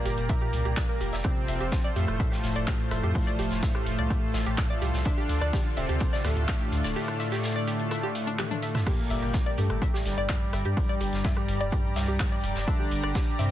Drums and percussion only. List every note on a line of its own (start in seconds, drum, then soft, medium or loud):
0.06 closed hi-hat medium
0.06 open hi-hat medium
0.18 closed hi-hat soft
0.29 kick loud
0.29 closed hi-hat medium
0.29 closed hi-hat soft
0.53 closed hi-hat medium
0.53 open hi-hat loud
0.65 closed hi-hat soft
0.77 kick loud
0.77 snare loud
0.77 clap loud
0.77 closed hi-hat soft
0.77 closed hi-hat loud
1.00 closed hi-hat medium
1.00 open hi-hat loud
1.13 snare medium
1.13 closed hi-hat soft
1.24 kick loud
1.24 cross-stick medium
1.24 closed hi-hat medium
1.24 closed hi-hat soft
1.48 closed hi-hat medium
1.48 open hi-hat loud
1.61 closed hi-hat soft
1.72 kick loud
1.72 snare loud
1.72 closed hi-hat medium
1.72 closed hi-hat soft
1.96 closed hi-hat medium
1.96 open hi-hat medium
2.08 cross-stick medium
2.08 closed hi-hat soft
2.20 kick loud
2.20 closed hi-hat medium
2.20 closed hi-hat soft
2.32 snare medium
2.44 snare soft
2.44 closed hi-hat medium
2.44 open hi-hat loud
2.56 closed hi-hat soft
2.68 kick loud
2.68 snare loud
2.68 clap loud
2.68 closed hi-hat soft
2.68 closed hi-hat loud
2.91 cross-stick medium
2.91 closed hi-hat medium
2.91 open hi-hat loud
3.03 closed hi-hat soft
3.15 kick loud
3.15 closed hi-hat soft
3.15 open hi-hat medium
3.28 closed hi-hat soft
3.39 closed hi-hat medium
3.39 open hi-hat loud
3.51 snare soft
3.51 closed hi-hat soft
3.63 kick loud
3.63 snare loud
3.63 closed hi-hat medium
3.63 closed hi-hat soft
3.75 cross-stick medium
3.86 closed hi-hat medium
3.86 open hi-hat medium
3.99 closed hi-hat soft
4.10 kick loud
4.10 closed hi-hat soft
4.10 closed hi-hat medium
4.34 snare loud
4.34 closed hi-hat medium
4.34 open hi-hat loud
4.46 closed hi-hat soft
4.57 kick loud
4.57 cross-stick medium
4.57 snare loud
4.57 clap loud
4.57 closed hi-hat medium
4.57 closed hi-hat soft
4.82 closed hi-hat medium
4.82 open hi-hat medium
4.94 snare medium
4.94 closed hi-hat soft
5.05 kick loud
5.05 closed hi-hat medium
5.05 closed hi-hat soft
5.29 closed hi-hat medium
5.29 open hi-hat loud
5.41 cross-stick medium
5.41 closed hi-hat soft
5.53 kick loud
5.53 snare loud
5.53 closed hi-hat medium
5.53 closed hi-hat soft
5.77 closed hi-hat medium
5.77 open hi-hat medium
5.89 closed hi-hat soft
6.00 kick loud
6.00 closed hi-hat medium
6.00 closed hi-hat soft
6.13 snare medium
6.24 cross-stick medium
6.24 snare soft
6.24 closed hi-hat medium
6.24 open hi-hat loud
6.37 closed hi-hat soft
6.48 kick loud
6.48 snare loud
6.48 clap loud
6.48 closed hi-hat loud
6.48 closed hi-hat soft
6.72 closed hi-hat medium
6.72 open hi-hat medium
6.84 snare soft
6.84 closed hi-hat soft
6.95 closed hi-hat soft
6.95 open hi-hat medium
7.08 cross-stick soft
7.08 closed hi-hat soft
7.20 closed hi-hat medium
7.20 open hi-hat loud
7.32 snare soft
7.32 closed hi-hat soft
7.43 snare loud
7.43 closed hi-hat soft
7.43 closed hi-hat medium
7.67 closed hi-hat medium
7.67 open hi-hat medium
7.80 closed hi-hat soft
7.91 cross-stick medium
7.91 closed hi-hat medium
7.91 closed hi-hat soft
8.15 closed hi-hat medium
8.15 open hi-hat loud
8.27 closed hi-hat soft
8.39 clap loud
8.39 closed hi-hat soft
8.39 closed hi-hat medium
8.39 high tom medium
8.51 high tom medium
8.62 closed hi-hat medium
8.62 open hi-hat medium
8.75 cross-stick medium
8.75 snare medium
8.75 closed hi-hat soft
8.75 mid tom medium
8.86 kick loud
8.86 cross-stick medium
8.86 closed hi-hat medium
8.86 closed hi-hat soft
8.86 crash medium
9.10 closed hi-hat medium
9.10 open hi-hat loud
9.22 closed hi-hat soft
9.33 kick loud
9.33 snare loud
9.33 closed hi-hat soft
9.33 closed hi-hat medium
9.58 closed hi-hat medium
9.58 open hi-hat medium
9.70 cross-stick medium
9.70 closed hi-hat soft
9.82 kick loud
9.82 closed hi-hat soft
9.82 closed hi-hat medium
9.94 snare medium
10.05 snare soft
10.05 closed hi-hat medium
10.05 open hi-hat loud
10.17 closed hi-hat soft
10.29 kick loud
10.29 snare loud
10.29 clap loud
10.29 closed hi-hat soft
10.29 closed hi-hat loud
10.53 cross-stick soft
10.53 closed hi-hat medium
10.53 open hi-hat medium
10.65 closed hi-hat soft
10.77 kick loud
10.77 closed hi-hat soft
10.77 open hi-hat medium
10.89 closed hi-hat soft
11.01 closed hi-hat medium
11.01 open hi-hat loud
11.13 snare soft
11.13 closed hi-hat soft
11.24 kick loud
11.24 snare loud
11.24 closed hi-hat medium
11.24 closed hi-hat soft
11.37 cross-stick medium
11.48 closed hi-hat medium
11.48 open hi-hat medium
11.61 closed hi-hat soft
11.72 kick loud
11.72 closed hi-hat soft
11.72 closed hi-hat medium
11.96 snare loud
11.96 closed hi-hat medium
11.96 open hi-hat loud
12.08 closed hi-hat soft
12.20 kick loud
12.20 cross-stick soft
12.20 snare loud
12.20 clap loud
12.20 closed hi-hat soft
12.20 closed hi-hat medium
12.44 closed hi-hat medium
12.44 open hi-hat loud
12.56 snare medium
12.56 closed hi-hat soft
12.68 kick loud
12.68 closed hi-hat soft
12.68 closed hi-hat medium
12.91 closed hi-hat medium
12.91 open hi-hat loud
13.04 cross-stick medium
13.04 closed hi-hat soft
13.15 kick loud
13.15 snare loud
13.15 closed hi-hat soft
13.15 closed hi-hat medium
13.39 closed hi-hat medium
13.39 open hi-hat loud